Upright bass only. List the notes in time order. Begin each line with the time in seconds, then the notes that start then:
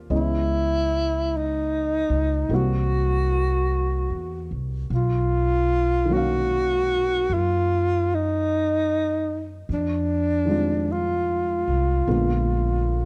0.10 C#2
2.09 C#2
2.49 C2
4.10 E2
4.51 C2
4.90 B1
7.30 F#2
9.69 F2
11.68 C2
12.07 A#1